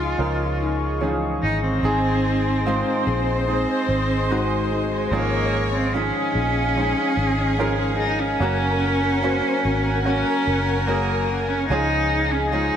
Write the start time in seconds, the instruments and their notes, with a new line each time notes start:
Already playing: fingered electric bass C#2, grand piano C#3 F3 C#4 D#4 G#4, nylon-string guitar G#3 C#4 D#4 G#4, cello F4, analog synth pad G#4 D#5 F5 C#6
0.18 fingered electric bass C#2, grand piano F3 C#4 D#4 A#4
0.60 nylon-string guitar G#3 C#4 D#4 G#4
1.01 grand piano E3 C#4 D#4 G#4, nylon-string guitar G#3 C#4 D#4 G#4
1.07 grand piano F3
1.43 fingered electric bass G#1, cello D#4
1.63 cello C4
1.82 fingered electric bass G#1, nylon-string guitar G#2 D#3 G#3 C4 D#4 G#4, grand piano G#2 C4 D#4 G#4, violin section G#4, analog synth pad G#4 C5 D#5 C6
2.65 nylon-string guitar G#2 D#3 G#3 C4 D#4 G#4, grand piano C4 D#4 F4, violin section C5
3.07 fingered electric bass A#1, nylon-string guitar G#3 C4 D#4 G#4
3.47 nylon-string guitar G#3 C4 D#4, grand piano C4 D#4 G#4, cello C4
3.51 nylon-string guitar G#4
3.88 fingered electric bass G#1
4.30 nylon-string guitar G#2 D#3 G#3 C4 D#4 G#4, cello G#3, grand piano C4 D#4 F#4
4.71 nylon-string guitar G#3 C4 D#4 G#4
4.91 cello G#3
5.11 fingered electric bass G#1, grand piano G#2 F3 G#3 C#4 D#4 G#4, nylon-string guitar G#2 D#3 G#3 C#4 F4 G#4, cello A#3, violin section C#5, analog synth pad F5 G#5
5.73 cello C4
5.93 nylon-string guitar G#2 D#3 G#3 C#4 F4 G#4, grand piano F3 G#3 C#4 D#4 G#4, cello C#4, violin section G#4
6.35 fingered electric bass A#1, nylon-string guitar G#3 C#4 F4 G#4
6.76 grand piano F3 G#3 C#4 D#4 G#4, nylon-string guitar G#3 C#4 F4
6.80 nylon-string guitar G#4
7.17 fingered electric bass G#1
7.58 nylon-string guitar G#2 D#3 G#3 C#4 F4 G#4, grand piano F3 G#3 C#4 D#4 A#4
7.99 nylon-string guitar C#4 F4 G#4, cello D#4
8.03 nylon-string guitar G#3
8.19 cello C#4
8.40 fingered electric bass F#1, nylon-string guitar F#3 C#4 F#4 A#4, grand piano A#3 C#4 F#4, analog synth pad C#4 A#4 F#5, violin section A#4
9.23 nylon-string guitar F#3 C#4 F#4 A#4, grand piano A#3 C#4 F#4, violin section C5
9.64 fingered electric bass G#1, nylon-string guitar C#4 F#4 A#4, violin section A#4
10.04 nylon-string guitar F#3 C#4 F#4, grand piano A#3 C#4 F#4, cello C#4
10.08 nylon-string guitar A#4
10.47 fingered electric bass F#1
10.86 nylon-string guitar F#3 C#4 F#4 A#4, cello A#3, grand piano A#3 C#4 G#4
11.29 nylon-string guitar C#4 F#4 A#4
11.49 cello C#4
11.69 fingered electric bass C#2, nylon-string guitar C#3 G#3 D#4 F4 G#4, grand piano C#3 F3 G#3 C#4 D#4 G#4, cello D#4, violin section G#4, analog synth pad G#4 D#5 F5
12.32 cello C#4
12.51 nylon-string guitar C#3 G#3 D#4 F4 G#4, grand piano F3 G#3 C#4 D#4 G#4, cello D#4